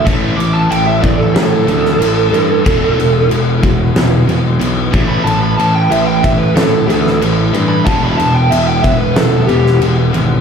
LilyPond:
<<
  \new Staff \with { instrumentName = "Lead electric guitar" } { \time 4/4 \key e \minor \tempo 4 = 92 r8 d'''16 a''16 g''16 e''16 d''16 a'16 a'2~ | a'4 r2 r8. b''16 | a''16 b''16 a''16 g''16 e''16 g''16 e''16 b'16 a'8 a'8 r8. b''16 | a''16 b''16 a''16 g''16 e''16 g''16 e''16 b'16 a'8 g'8 r4 | }
  \new Staff \with { instrumentName = "Analog synth pad" } { \time 4/4 \key e \minor r1 | <e b fis'>2.~ <e b fis'>8 <a e' b'>8~ | <a e' b'>1 | <e b fis''>1 | }
  \new Staff \with { instrumentName = "Distorted electric guitar" } { \clef bass \time 4/4 \key e \minor <a, e a>8 <a, e>8 <a, e>8 <a, e>8 <a, e>8 <a, e>8 <a, e>8 <a, e>8 | <e, b, e>8 <e, b,>8 <e, b,>8 <e, b,>8 <e, b,>8 <e, b,>8 <e, b,>8 <a, e a>8 | <a, e>8 <a, e>8 <a, e>8 <a, e>8 <a, e>8 <a, e>8 <a, e>8 <a, e>8 | <e, b, e>8 <e, b,>8 <e, b,>8 <e, b,>8 <e, b,>8 <e, b,>8 <e, b,>8 <e, b,>8 | }
  \new Staff \with { instrumentName = "Distorted electric guitar" } { \clef bass \time 4/4 \key e \minor <a, e a>8 <a, e>8 <a, e>8 <a, e>8 <a, e>8 <a, e>8 <a, e>8 <a, e>8 | <e, b, e>8 <e, b,>8 <e, b,>8 <e, b,>8 <e, b,>8 <e, b,>8 <e, b,>8 <a, e a>8 | <a, e>8 <a, e>8 <a, e>8 <a, e>8 <a, e>8 <a, e>8 <a, e>8 <a, e>8 | <e, b, e>8 <e, b,>8 <e, b,>8 <e, b,>8 <e, b,>8 <e, b,>8 <e, b,>8 <e, b,>8 | }
  \new Staff \with { instrumentName = "Picked electric bass" } { \clef bass \time 4/4 \key e \minor a,,8 a,,8 a,,8 a,,8 a,8 d,8 a,,8 g,8 | e,,8 e,,8 e,,4 e,,8 e,,8 b,,8 a,,8 | a,,8 a,,8 a,,8 a,,8 a,8 d,8 a,,8 g,8 | e,,8 e,,8 e,,4 e,,8 e,,8 e,,8 gis,,8 | }
  \new DrumStaff \with { instrumentName = "Drums" } \drummode { \time 4/4 <cymc bd>8 cymc8 cymc8 <cymc bd>8 <cymc sn>8 cymc16 sn16 cymc8 cymc8 | <cymc bd>8 cymc8 cymc8 <cymc bd>8 <cymc sn>8 cymc8 cymc8 <cymc bd>8 | cymc8 cymc8 cymc8 <cymc bd>8 <cymc sn>8 cymc16 sn16 cymc8 cymc8 | <cymc bd>8 cymc8 cymc8 <cymc bd>8 <cymc sn>8 cymc16 sn16 cymc8 cymc8 | }
>>